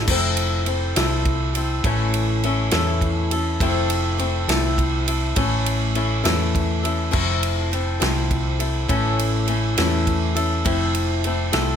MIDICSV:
0, 0, Header, 1, 4, 480
1, 0, Start_track
1, 0, Tempo, 587659
1, 72, Time_signature, 6, 3, 24, 8
1, 9606, End_track
2, 0, Start_track
2, 0, Title_t, "Steel-string acoustic guitar"
2, 0, Program_c, 0, 25
2, 70, Note_on_c, 0, 53, 83
2, 77, Note_on_c, 0, 57, 88
2, 81, Note_on_c, 0, 60, 96
2, 88, Note_on_c, 0, 64, 101
2, 88, Note_on_c, 0, 69, 99
2, 534, Note_off_c, 0, 60, 0
2, 537, Note_off_c, 0, 57, 0
2, 540, Note_on_c, 0, 57, 70
2, 543, Note_on_c, 0, 60, 73
2, 551, Note_off_c, 0, 53, 0
2, 552, Note_off_c, 0, 64, 0
2, 554, Note_off_c, 0, 69, 0
2, 556, Note_on_c, 0, 64, 75
2, 557, Note_on_c, 0, 69, 78
2, 774, Note_off_c, 0, 64, 0
2, 779, Note_off_c, 0, 69, 0
2, 782, Note_off_c, 0, 60, 0
2, 783, Note_off_c, 0, 57, 0
2, 784, Note_on_c, 0, 64, 83
2, 789, Note_on_c, 0, 69, 79
2, 792, Note_on_c, 0, 60, 72
2, 793, Note_on_c, 0, 57, 71
2, 795, Note_on_c, 0, 53, 67
2, 1254, Note_off_c, 0, 69, 0
2, 1257, Note_on_c, 0, 69, 64
2, 1267, Note_off_c, 0, 64, 0
2, 1270, Note_off_c, 0, 60, 0
2, 1270, Note_on_c, 0, 64, 59
2, 1274, Note_off_c, 0, 53, 0
2, 1279, Note_on_c, 0, 60, 53
2, 1505, Note_off_c, 0, 69, 0
2, 1507, Note_on_c, 0, 45, 91
2, 1508, Note_off_c, 0, 64, 0
2, 1510, Note_off_c, 0, 57, 0
2, 1510, Note_off_c, 0, 60, 0
2, 1512, Note_on_c, 0, 52, 97
2, 1513, Note_on_c, 0, 57, 97
2, 1513, Note_on_c, 0, 61, 98
2, 1517, Note_on_c, 0, 64, 104
2, 1518, Note_on_c, 0, 69, 99
2, 1986, Note_off_c, 0, 61, 0
2, 1989, Note_off_c, 0, 57, 0
2, 1990, Note_off_c, 0, 45, 0
2, 1992, Note_on_c, 0, 57, 77
2, 1995, Note_on_c, 0, 61, 71
2, 1996, Note_off_c, 0, 64, 0
2, 1999, Note_on_c, 0, 64, 81
2, 2001, Note_off_c, 0, 69, 0
2, 2004, Note_on_c, 0, 69, 85
2, 2217, Note_off_c, 0, 61, 0
2, 2217, Note_off_c, 0, 64, 0
2, 2217, Note_off_c, 0, 69, 0
2, 2223, Note_off_c, 0, 57, 0
2, 2227, Note_on_c, 0, 61, 76
2, 2227, Note_on_c, 0, 64, 80
2, 2227, Note_on_c, 0, 69, 87
2, 2232, Note_off_c, 0, 52, 0
2, 2233, Note_on_c, 0, 57, 81
2, 2236, Note_on_c, 0, 52, 71
2, 2239, Note_on_c, 0, 45, 70
2, 2707, Note_off_c, 0, 69, 0
2, 2710, Note_off_c, 0, 61, 0
2, 2710, Note_on_c, 0, 69, 72
2, 2715, Note_off_c, 0, 45, 0
2, 2716, Note_off_c, 0, 64, 0
2, 2719, Note_on_c, 0, 64, 57
2, 2720, Note_on_c, 0, 61, 53
2, 2726, Note_off_c, 0, 57, 0
2, 2730, Note_on_c, 0, 57, 50
2, 2943, Note_off_c, 0, 52, 0
2, 2943, Note_off_c, 0, 57, 0
2, 2945, Note_off_c, 0, 64, 0
2, 2946, Note_on_c, 0, 53, 97
2, 2947, Note_off_c, 0, 61, 0
2, 2947, Note_off_c, 0, 69, 0
2, 2950, Note_on_c, 0, 60, 95
2, 2953, Note_on_c, 0, 57, 94
2, 2955, Note_on_c, 0, 64, 102
2, 2957, Note_on_c, 0, 69, 99
2, 3409, Note_off_c, 0, 57, 0
2, 3410, Note_off_c, 0, 60, 0
2, 3413, Note_on_c, 0, 57, 68
2, 3420, Note_on_c, 0, 60, 74
2, 3424, Note_off_c, 0, 64, 0
2, 3427, Note_off_c, 0, 69, 0
2, 3427, Note_on_c, 0, 64, 74
2, 3429, Note_off_c, 0, 53, 0
2, 3431, Note_on_c, 0, 69, 79
2, 3652, Note_off_c, 0, 69, 0
2, 3654, Note_off_c, 0, 57, 0
2, 3655, Note_off_c, 0, 60, 0
2, 3657, Note_off_c, 0, 64, 0
2, 3662, Note_on_c, 0, 69, 86
2, 3664, Note_on_c, 0, 57, 74
2, 3665, Note_on_c, 0, 60, 74
2, 3667, Note_on_c, 0, 64, 83
2, 3670, Note_on_c, 0, 53, 62
2, 4141, Note_off_c, 0, 69, 0
2, 4144, Note_off_c, 0, 60, 0
2, 4145, Note_on_c, 0, 69, 61
2, 4146, Note_off_c, 0, 64, 0
2, 4150, Note_on_c, 0, 64, 61
2, 4151, Note_off_c, 0, 53, 0
2, 4154, Note_on_c, 0, 60, 50
2, 4375, Note_off_c, 0, 64, 0
2, 4375, Note_off_c, 0, 69, 0
2, 4375, Note_on_c, 0, 52, 93
2, 4376, Note_on_c, 0, 45, 90
2, 4377, Note_off_c, 0, 57, 0
2, 4378, Note_off_c, 0, 60, 0
2, 4380, Note_on_c, 0, 57, 99
2, 4382, Note_on_c, 0, 61, 103
2, 4385, Note_on_c, 0, 64, 107
2, 4385, Note_on_c, 0, 69, 116
2, 4853, Note_off_c, 0, 61, 0
2, 4855, Note_off_c, 0, 57, 0
2, 4858, Note_on_c, 0, 57, 72
2, 4863, Note_off_c, 0, 64, 0
2, 4863, Note_on_c, 0, 61, 72
2, 4864, Note_off_c, 0, 45, 0
2, 4866, Note_on_c, 0, 64, 80
2, 4868, Note_off_c, 0, 69, 0
2, 4871, Note_on_c, 0, 69, 81
2, 5083, Note_off_c, 0, 69, 0
2, 5086, Note_off_c, 0, 64, 0
2, 5092, Note_off_c, 0, 57, 0
2, 5092, Note_off_c, 0, 61, 0
2, 5093, Note_on_c, 0, 69, 84
2, 5095, Note_on_c, 0, 64, 79
2, 5098, Note_off_c, 0, 52, 0
2, 5101, Note_on_c, 0, 61, 66
2, 5102, Note_on_c, 0, 45, 72
2, 5102, Note_on_c, 0, 52, 77
2, 5102, Note_on_c, 0, 57, 71
2, 5574, Note_off_c, 0, 69, 0
2, 5577, Note_off_c, 0, 61, 0
2, 5577, Note_on_c, 0, 69, 64
2, 5586, Note_off_c, 0, 64, 0
2, 5587, Note_off_c, 0, 45, 0
2, 5587, Note_on_c, 0, 61, 57
2, 5590, Note_on_c, 0, 64, 62
2, 5594, Note_off_c, 0, 57, 0
2, 5597, Note_on_c, 0, 57, 51
2, 5801, Note_off_c, 0, 57, 0
2, 5803, Note_off_c, 0, 52, 0
2, 5806, Note_off_c, 0, 69, 0
2, 5807, Note_on_c, 0, 53, 83
2, 5809, Note_off_c, 0, 64, 0
2, 5810, Note_off_c, 0, 61, 0
2, 5810, Note_on_c, 0, 57, 99
2, 5813, Note_on_c, 0, 60, 91
2, 5816, Note_on_c, 0, 69, 96
2, 5819, Note_on_c, 0, 64, 98
2, 6298, Note_off_c, 0, 57, 0
2, 6299, Note_off_c, 0, 53, 0
2, 6302, Note_off_c, 0, 60, 0
2, 6302, Note_on_c, 0, 57, 70
2, 6311, Note_on_c, 0, 60, 71
2, 6315, Note_off_c, 0, 64, 0
2, 6316, Note_off_c, 0, 69, 0
2, 6319, Note_on_c, 0, 64, 78
2, 6320, Note_on_c, 0, 69, 81
2, 6524, Note_off_c, 0, 69, 0
2, 6531, Note_off_c, 0, 60, 0
2, 6534, Note_on_c, 0, 69, 86
2, 6535, Note_off_c, 0, 64, 0
2, 6538, Note_off_c, 0, 57, 0
2, 6541, Note_on_c, 0, 60, 70
2, 6545, Note_on_c, 0, 64, 82
2, 6548, Note_on_c, 0, 57, 73
2, 6551, Note_on_c, 0, 53, 71
2, 7016, Note_off_c, 0, 69, 0
2, 7019, Note_on_c, 0, 69, 66
2, 7023, Note_off_c, 0, 64, 0
2, 7026, Note_off_c, 0, 60, 0
2, 7027, Note_on_c, 0, 64, 59
2, 7031, Note_off_c, 0, 53, 0
2, 7036, Note_on_c, 0, 60, 53
2, 7254, Note_off_c, 0, 64, 0
2, 7255, Note_off_c, 0, 69, 0
2, 7257, Note_on_c, 0, 45, 96
2, 7260, Note_off_c, 0, 60, 0
2, 7262, Note_on_c, 0, 52, 106
2, 7263, Note_on_c, 0, 61, 92
2, 7264, Note_off_c, 0, 57, 0
2, 7264, Note_on_c, 0, 64, 107
2, 7265, Note_on_c, 0, 69, 110
2, 7268, Note_on_c, 0, 57, 96
2, 7738, Note_off_c, 0, 61, 0
2, 7742, Note_off_c, 0, 57, 0
2, 7744, Note_off_c, 0, 45, 0
2, 7745, Note_on_c, 0, 57, 67
2, 7747, Note_off_c, 0, 64, 0
2, 7748, Note_on_c, 0, 61, 72
2, 7750, Note_on_c, 0, 64, 83
2, 7754, Note_off_c, 0, 69, 0
2, 7757, Note_on_c, 0, 69, 77
2, 7972, Note_off_c, 0, 69, 0
2, 7980, Note_off_c, 0, 61, 0
2, 7980, Note_off_c, 0, 64, 0
2, 7982, Note_off_c, 0, 57, 0
2, 7982, Note_on_c, 0, 69, 81
2, 7989, Note_on_c, 0, 64, 80
2, 7990, Note_off_c, 0, 52, 0
2, 7990, Note_on_c, 0, 61, 81
2, 7991, Note_on_c, 0, 57, 77
2, 7993, Note_on_c, 0, 52, 66
2, 7995, Note_on_c, 0, 45, 71
2, 8454, Note_off_c, 0, 69, 0
2, 8455, Note_off_c, 0, 64, 0
2, 8456, Note_off_c, 0, 61, 0
2, 8457, Note_on_c, 0, 69, 69
2, 8459, Note_on_c, 0, 64, 56
2, 8466, Note_off_c, 0, 57, 0
2, 8466, Note_on_c, 0, 61, 54
2, 8470, Note_on_c, 0, 57, 52
2, 8473, Note_off_c, 0, 45, 0
2, 8690, Note_off_c, 0, 57, 0
2, 8692, Note_off_c, 0, 52, 0
2, 8694, Note_off_c, 0, 61, 0
2, 8695, Note_off_c, 0, 69, 0
2, 8695, Note_on_c, 0, 53, 100
2, 8696, Note_off_c, 0, 64, 0
2, 8698, Note_on_c, 0, 60, 107
2, 8700, Note_on_c, 0, 57, 93
2, 8705, Note_on_c, 0, 69, 110
2, 8706, Note_on_c, 0, 64, 99
2, 9183, Note_off_c, 0, 53, 0
2, 9185, Note_off_c, 0, 60, 0
2, 9187, Note_off_c, 0, 57, 0
2, 9190, Note_on_c, 0, 57, 68
2, 9195, Note_on_c, 0, 60, 74
2, 9200, Note_off_c, 0, 64, 0
2, 9200, Note_off_c, 0, 69, 0
2, 9203, Note_on_c, 0, 64, 74
2, 9204, Note_on_c, 0, 69, 84
2, 9404, Note_off_c, 0, 69, 0
2, 9410, Note_off_c, 0, 64, 0
2, 9411, Note_off_c, 0, 57, 0
2, 9411, Note_off_c, 0, 60, 0
2, 9414, Note_on_c, 0, 69, 90
2, 9420, Note_on_c, 0, 60, 77
2, 9420, Note_on_c, 0, 64, 71
2, 9421, Note_on_c, 0, 57, 75
2, 9424, Note_on_c, 0, 53, 68
2, 9606, Note_off_c, 0, 53, 0
2, 9606, Note_off_c, 0, 57, 0
2, 9606, Note_off_c, 0, 60, 0
2, 9606, Note_off_c, 0, 64, 0
2, 9606, Note_off_c, 0, 69, 0
2, 9606, End_track
3, 0, Start_track
3, 0, Title_t, "Fingered electric bass"
3, 0, Program_c, 1, 33
3, 65, Note_on_c, 1, 29, 98
3, 756, Note_off_c, 1, 29, 0
3, 790, Note_on_c, 1, 36, 95
3, 1479, Note_off_c, 1, 36, 0
3, 1507, Note_on_c, 1, 33, 106
3, 2197, Note_off_c, 1, 33, 0
3, 2226, Note_on_c, 1, 40, 102
3, 2916, Note_off_c, 1, 40, 0
3, 2947, Note_on_c, 1, 29, 111
3, 3636, Note_off_c, 1, 29, 0
3, 3659, Note_on_c, 1, 36, 104
3, 4353, Note_off_c, 1, 36, 0
3, 4386, Note_on_c, 1, 33, 111
3, 5076, Note_off_c, 1, 33, 0
3, 5106, Note_on_c, 1, 40, 99
3, 5796, Note_off_c, 1, 40, 0
3, 5829, Note_on_c, 1, 29, 98
3, 6518, Note_off_c, 1, 29, 0
3, 6549, Note_on_c, 1, 36, 107
3, 7237, Note_off_c, 1, 36, 0
3, 7270, Note_on_c, 1, 33, 110
3, 7958, Note_off_c, 1, 33, 0
3, 7988, Note_on_c, 1, 40, 102
3, 8677, Note_off_c, 1, 40, 0
3, 8707, Note_on_c, 1, 29, 100
3, 9397, Note_off_c, 1, 29, 0
3, 9424, Note_on_c, 1, 36, 99
3, 9606, Note_off_c, 1, 36, 0
3, 9606, End_track
4, 0, Start_track
4, 0, Title_t, "Drums"
4, 61, Note_on_c, 9, 49, 123
4, 63, Note_on_c, 9, 36, 108
4, 143, Note_off_c, 9, 49, 0
4, 145, Note_off_c, 9, 36, 0
4, 300, Note_on_c, 9, 51, 87
4, 381, Note_off_c, 9, 51, 0
4, 540, Note_on_c, 9, 51, 84
4, 622, Note_off_c, 9, 51, 0
4, 785, Note_on_c, 9, 51, 114
4, 792, Note_on_c, 9, 38, 115
4, 867, Note_off_c, 9, 51, 0
4, 874, Note_off_c, 9, 38, 0
4, 1023, Note_on_c, 9, 51, 71
4, 1025, Note_on_c, 9, 36, 82
4, 1104, Note_off_c, 9, 51, 0
4, 1106, Note_off_c, 9, 36, 0
4, 1265, Note_on_c, 9, 51, 82
4, 1346, Note_off_c, 9, 51, 0
4, 1503, Note_on_c, 9, 36, 111
4, 1504, Note_on_c, 9, 51, 96
4, 1585, Note_off_c, 9, 36, 0
4, 1586, Note_off_c, 9, 51, 0
4, 1745, Note_on_c, 9, 51, 80
4, 1826, Note_off_c, 9, 51, 0
4, 1988, Note_on_c, 9, 51, 77
4, 2070, Note_off_c, 9, 51, 0
4, 2215, Note_on_c, 9, 51, 105
4, 2223, Note_on_c, 9, 38, 121
4, 2297, Note_off_c, 9, 51, 0
4, 2305, Note_off_c, 9, 38, 0
4, 2462, Note_on_c, 9, 36, 77
4, 2464, Note_on_c, 9, 51, 74
4, 2543, Note_off_c, 9, 36, 0
4, 2546, Note_off_c, 9, 51, 0
4, 2704, Note_on_c, 9, 51, 85
4, 2786, Note_off_c, 9, 51, 0
4, 2944, Note_on_c, 9, 36, 122
4, 2946, Note_on_c, 9, 51, 110
4, 3025, Note_off_c, 9, 36, 0
4, 3028, Note_off_c, 9, 51, 0
4, 3182, Note_on_c, 9, 51, 87
4, 3264, Note_off_c, 9, 51, 0
4, 3425, Note_on_c, 9, 51, 86
4, 3506, Note_off_c, 9, 51, 0
4, 3667, Note_on_c, 9, 51, 120
4, 3674, Note_on_c, 9, 38, 117
4, 3749, Note_off_c, 9, 51, 0
4, 3756, Note_off_c, 9, 38, 0
4, 3905, Note_on_c, 9, 36, 78
4, 3908, Note_on_c, 9, 51, 82
4, 3987, Note_off_c, 9, 36, 0
4, 3989, Note_off_c, 9, 51, 0
4, 4146, Note_on_c, 9, 51, 86
4, 4227, Note_off_c, 9, 51, 0
4, 4378, Note_on_c, 9, 51, 109
4, 4383, Note_on_c, 9, 36, 119
4, 4460, Note_off_c, 9, 51, 0
4, 4465, Note_off_c, 9, 36, 0
4, 4625, Note_on_c, 9, 51, 88
4, 4706, Note_off_c, 9, 51, 0
4, 4861, Note_on_c, 9, 51, 78
4, 4943, Note_off_c, 9, 51, 0
4, 5106, Note_on_c, 9, 51, 109
4, 5113, Note_on_c, 9, 38, 115
4, 5187, Note_off_c, 9, 51, 0
4, 5195, Note_off_c, 9, 38, 0
4, 5349, Note_on_c, 9, 36, 80
4, 5352, Note_on_c, 9, 51, 79
4, 5430, Note_off_c, 9, 36, 0
4, 5434, Note_off_c, 9, 51, 0
4, 5594, Note_on_c, 9, 51, 75
4, 5675, Note_off_c, 9, 51, 0
4, 5825, Note_on_c, 9, 49, 98
4, 5828, Note_on_c, 9, 36, 105
4, 5907, Note_off_c, 9, 49, 0
4, 5910, Note_off_c, 9, 36, 0
4, 6067, Note_on_c, 9, 51, 84
4, 6149, Note_off_c, 9, 51, 0
4, 6312, Note_on_c, 9, 51, 78
4, 6394, Note_off_c, 9, 51, 0
4, 6547, Note_on_c, 9, 51, 110
4, 6554, Note_on_c, 9, 38, 115
4, 6629, Note_off_c, 9, 51, 0
4, 6636, Note_off_c, 9, 38, 0
4, 6785, Note_on_c, 9, 36, 81
4, 6785, Note_on_c, 9, 51, 78
4, 6867, Note_off_c, 9, 36, 0
4, 6867, Note_off_c, 9, 51, 0
4, 7024, Note_on_c, 9, 51, 77
4, 7105, Note_off_c, 9, 51, 0
4, 7264, Note_on_c, 9, 36, 123
4, 7265, Note_on_c, 9, 51, 104
4, 7346, Note_off_c, 9, 36, 0
4, 7347, Note_off_c, 9, 51, 0
4, 7509, Note_on_c, 9, 51, 87
4, 7590, Note_off_c, 9, 51, 0
4, 7739, Note_on_c, 9, 51, 84
4, 7821, Note_off_c, 9, 51, 0
4, 7984, Note_on_c, 9, 51, 114
4, 7991, Note_on_c, 9, 38, 116
4, 8065, Note_off_c, 9, 51, 0
4, 8073, Note_off_c, 9, 38, 0
4, 8225, Note_on_c, 9, 36, 75
4, 8225, Note_on_c, 9, 51, 89
4, 8306, Note_off_c, 9, 51, 0
4, 8307, Note_off_c, 9, 36, 0
4, 8465, Note_on_c, 9, 51, 86
4, 8547, Note_off_c, 9, 51, 0
4, 8702, Note_on_c, 9, 51, 116
4, 8705, Note_on_c, 9, 36, 115
4, 8784, Note_off_c, 9, 51, 0
4, 8786, Note_off_c, 9, 36, 0
4, 8940, Note_on_c, 9, 51, 87
4, 9021, Note_off_c, 9, 51, 0
4, 9180, Note_on_c, 9, 51, 84
4, 9261, Note_off_c, 9, 51, 0
4, 9417, Note_on_c, 9, 51, 112
4, 9424, Note_on_c, 9, 38, 121
4, 9499, Note_off_c, 9, 51, 0
4, 9506, Note_off_c, 9, 38, 0
4, 9606, End_track
0, 0, End_of_file